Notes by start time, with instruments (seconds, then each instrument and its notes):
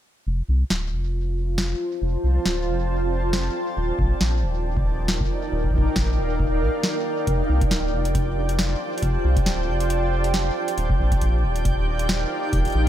0.27 analog synth bass F1, ambient pad F4
0.48 analog synth bass C2
0.60 ambient pad C5
0.70 analog synth bass D1, snare
0.91 analog synth bass F1, ambient pad D5 A5
1.11 ambient pad G5
1.58 snare
2.02 analog synth bass F1
2.24 analog synth bass C2
2.46 analog synth bass D1, snare
2.67 analog synth bass F1
3.33 snare
3.77 analog synth bass D#1, ambient pad D#4
3.99 analog synth bass A#1, kick
4.10 ambient pad A#4
4.21 analog synth bass A#1, snare
4.43 analog synth bass D#1
4.69 ambient pad F5
4.77 kick
5.08 snare
5.21 kick
5.52 analog synth bass D#1
5.64 kick
5.71 analog synth bass A#1, kick
5.78 kick
5.96 analog synth bass A#1, kick, snare
6.18 analog synth bass D#1
6.40 kick
6.62 analog synth bass A#1
6.83 snare
7.27 analog synth bass F1, ambient pad F4, synth texture G4 G5, kick, closed hi-hat
7.49 analog synth bass C2, ambient pad C5
7.61 kick, closed hi-hat
7.71 analog synth bass D1, snare, closed hi-hat
7.89 ambient pad A5
7.93 analog synth bass F1
8.05 closed hi-hat
8.15 kick, closed hi-hat
8.49 closed hi-hat
8.59 snare, closed hi-hat
8.98 closed hi-hat
9.02 analog synth bass F1, kick, closed hi-hat
9.24 analog synth bass C2
9.37 kick, closed hi-hat
9.46 analog synth bass D1, snare, closed hi-hat
9.68 analog synth bass F1
9.80 closed hi-hat
9.90 closed hi-hat
10.24 closed hi-hat
10.34 snare, closed hi-hat
10.68 closed hi-hat
10.78 analog synth bass D#1, ambient pad D#4, closed hi-hat
10.90 kick
11.00 analog synth bass A#1, ambient pad A#4 F5
11.12 kick, closed hi-hat
11.21 analog synth bass A#1, closed hi-hat
11.43 analog synth bass D#1
11.56 closed hi-hat
11.65 kick, closed hi-hat
11.99 closed hi-hat
12.09 snare, closed hi-hat
12.53 analog synth bass D#1, kick, closed hi-hat
12.65 closed hi-hat
12.68 closed hi-hat
12.70 closed hi-hat
12.72 analog synth bass A#1, closed hi-hat